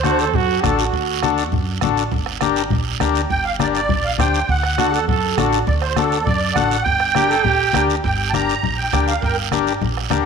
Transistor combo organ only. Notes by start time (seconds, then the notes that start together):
0.04 D4 F#4 A4
0.63 D4 F#4 A4
1.23 D4 F#4 A4
1.83 D4 F#4 A4
2.42 D4 G4 A#4
3.00 D4 G4 A#4
3.60 D4 G4 A#4
4.18 D4 G4 C5
4.78 D4 F#4 A4
5.39 D4 F#4 A4
5.98 D4 F#4 A4
6.56 D4 F#4 A4
7.15 D4 G4 A#4
7.75 D4 G4 A#4
8.34 D4 G4 A#4
8.93 D4 G4 A#4
9.53 D4 G4 A#4
10.10 D4 G4 A#4